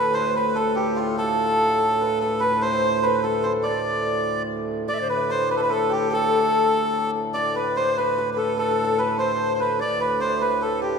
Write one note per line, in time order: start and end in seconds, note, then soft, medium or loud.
0.00 4.89 D2 medium
0.00 4.89 A2 medium
0.00 0.56 A4 medium
0.00 0.15 B4 loud
0.00 0.23 B4 medium
0.00 0.37 B4 medium
0.00 0.76 D5 medium
0.00 0.56 E5 medium
0.14 0.35 C5 medium
0.14 0.44 C5 medium
0.35 0.58 B4 medium
0.35 0.57 B4 medium
0.35 2.00 B4 medium
0.55 0.76 A4 medium
0.55 1.19 A4 medium
0.55 1.16 A4 medium
0.76 0.98 G4 medium
0.76 3.91 G4 medium
0.96 1.17 F4 medium
0.96 4.35 F4 medium
1.18 2.19 A4 loud
1.18 2.22 A4 medium
1.18 2.18 A4 medium
2.01 2.42 B4 medium
2.20 2.40 A4 medium
2.20 3.24 A4 medium
2.20 2.46 A4 medium
2.40 2.63 B4 loud
2.40 2.69 B4 medium
2.44 2.63 B4 medium
2.62 3.05 C5 medium
2.62 2.83 C5 medium
2.62 3.02 C5 medium
2.84 3.12 C5 medium
3.02 3.25 B4 medium
3.02 3.24 B4 medium
3.02 3.52 B4 medium
3.23 3.45 A4 medium
3.23 5.69 A4 medium
3.23 3.67 A4 medium
3.43 3.53 C5 medium
3.43 5.30 C5 medium
3.63 4.42 D5 medium
3.63 4.48 D5 medium
3.63 4.88 D5 medium
4.88 9.81 D2 medium
4.88 9.81 A2 medium
4.88 4.95 D5 medium
4.88 7.35 D5 medium
4.88 5.08 D5 loud
4.94 5.00 E5 medium
4.98 5.11 C5 medium
4.98 5.01 D5 medium
5.09 5.50 B4 medium
5.09 5.31 B4 medium
5.30 5.57 C5 medium
5.30 5.49 C5 medium
5.50 5.72 B4 medium
5.50 5.56 B4 medium
5.50 5.59 B4 medium
5.56 5.61 A4 medium
5.56 7.56 B4 medium
5.62 5.72 B4 medium
5.69 6.10 A4 medium
5.69 6.11 A4 medium
5.69 5.92 A4 medium
5.90 9.04 G4 medium
5.90 6.13 G4 medium
6.11 8.36 A4 medium
6.11 7.10 A4 medium
6.11 7.11 A4 loud
7.34 7.55 D5 loud
7.34 7.54 D5 medium
7.34 9.79 D5 medium
7.54 7.74 B4 medium
7.54 7.76 B4 medium
7.54 7.83 B4 medium
7.76 7.97 C5 loud
7.76 7.99 C5 medium
7.76 8.04 C5 medium
7.97 8.30 B4 medium
7.97 8.36 B4 medium
7.97 8.18 B4 medium
8.18 8.98 B4 medium
8.33 8.56 A4 medium
8.33 8.57 A4 medium
8.33 8.38 B4 medium
8.38 8.57 A4 medium
8.57 9.00 A4 medium
8.57 8.71 A4 medium
8.57 9.00 A4 loud
8.71 8.84 A4 medium
8.84 10.99 A4 medium
8.98 9.19 B4 medium
8.98 9.18 B4 medium
8.98 9.24 B4 medium
9.18 9.66 C5 medium
9.18 9.82 C5 medium
9.18 9.54 C5 medium
9.55 9.60 C5 medium
9.60 10.26 B4 medium
9.60 9.79 B4 medium
9.79 10.99 D2 medium
9.79 10.99 A2 medium
9.79 10.99 D5 medium
9.79 10.02 D5 medium
9.79 10.02 D5 loud
10.00 10.22 B4 medium
10.00 10.20 B4 medium
10.20 10.47 C5 medium
10.20 10.40 C5 medium
10.20 10.42 C5 medium
10.41 10.60 B4 medium
10.41 10.62 B4 medium
10.41 10.99 B4 medium
10.62 10.81 A4 medium
10.62 10.84 A4 medium
10.82 10.99 G4 medium